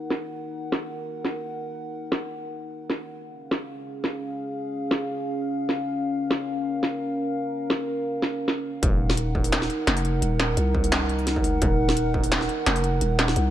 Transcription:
Already playing: D#4 A#4 F#5
0.10 snare
0.72 snare
1.25 snare
2.12 snare
2.90 snare
3.24 C#4 G#4 F5
3.51 snare
4.04 snare
4.91 snare
5.69 snare
6.04 A#4
6.31 snare
6.83 snare
7.70 snare
8.22 snare
8.48 snare
8.83 D#1 D#4 A#4 F#5, kick, closed hi-hat
9.10 snare
9.17 closed hi-hat
9.35 kick
9.44 open hi-hat
9.52 snare, closed hi-hat
9.62 snare
9.70 closed hi-hat
9.87 F1, snare, closed hi-hat
9.97 open hi-hat
10.05 closed hi-hat
10.22 D#1, closed hi-hat
10.40 snare
10.57 C2, closed hi-hat
10.75 kick
10.84 open hi-hat
10.92 snare, closed hi-hat
11.09 closed hi-hat
11.19 open hi-hat
11.27 snare, closed hi-hat
11.36 kick
11.44 C#2, open hi-hat
11.62 D#1, kick, closed hi-hat
11.89 snare
11.97 closed hi-hat
12.14 kick
12.24 open hi-hat
12.32 snare, closed hi-hat
12.41 snare
12.49 closed hi-hat
12.66 F1, snare, closed hi-hat
12.76 open hi-hat
12.84 closed hi-hat
13.01 D#1, closed hi-hat
13.19 snare, closed hi-hat
13.28 snare
13.36 C2, closed hi-hat

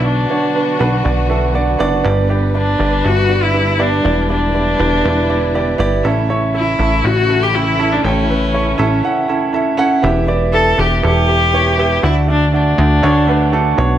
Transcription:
Already playing: B1 B2 D3 F#3 B3 D4 F#4 D5
0.06 D4
0.29 B3 D4 F#4 C#5
0.54 B3 D4 F#4 B4
0.79 B1 B3 D4 F#4 B4
1.04 B1 B3 D4 F#4 D5
1.29 B3 D4 F#4 A4 E5
1.53 B3 D4 F#4 D5 F#5
1.79 F#1 B3 D4 F#4 D5 A5
2.03 G1 G2 G3 B3 D4 G4 B4 D5
2.29 B3 D4 G4 D5
2.54 B3 D4 G4 D5
2.78 G1 B3 D4 G4 D5
3.03 G1 B3 D4 F#4 G4 E5
3.28 B3 D4 G4 D5
3.43 E4
3.53 B3 D4 G4 E5
3.78 B3 D4 G4 D5
4.03 E1 D3 E3 B3 E4 G4 D5
4.29 B3 D4 E4 G4 D5
4.54 B3 E4 G4 D5
4.79 E1 B3 E4 G4 D5
5.04 E1 B3 E4 G4 B4
5.29 B3 E4 G4 D5
5.54 B3 E4 G4 D5
5.78 G1 B3 E4 G4 D5
6.03 A1 A2 C#3 E3 A3 C#4 E4 A4 E5
6.29 C#4 E4 A4 C#5
6.53 C#4 E4 A4 E5
6.79 A1 C#4 E4 A4 E5
7.03 A1 C#4 E4 F#4 A4 E5
7.29 C#4 E4 A4 E5
7.43 G4
7.53 C#4 E4 A4 G5
7.78 C#4 E4 A4 E5
7.92 D4
8.03 A1 A2 C#4 E4 A4 G5
8.29 C#4 E4 A4 B4
8.53 C#4 E4 A4 C#5
8.78 A1 C#4 E4 A4 E5
9.03 C#4 E4 A4 F#5
9.28 C#4 E4 A4 E5
9.53 C#4 E4 A4 E5
9.77 C#4 E4 A4 F#5
10.02 E1 E3 B3 E4 G4 E5
10.27 B3 E4 G4 D5
10.52 B3 E4 G4 A4 E5
10.77 E1 B3 E4 G4 B4
11.02 E1 B3 E4 G4 A4
11.28 B3 E4 G4 E5
11.53 B3 E4 G4 C#5
11.78 B3 E4 G4 E5
12.02 D2 D3 A3 D4 E4 F#4 D5
12.27 A3 D4 F#4 D5
12.52 A3 D4 F#4 D5
12.78 D2 A3 D4 F#4 D5
13.02 D2 A3 D4 F#4 C#5
13.27 A3 D4 F#4 B4
13.52 A3 D4 F#4 A4
13.77 B1 B2 B3 D4 F#4 C#5

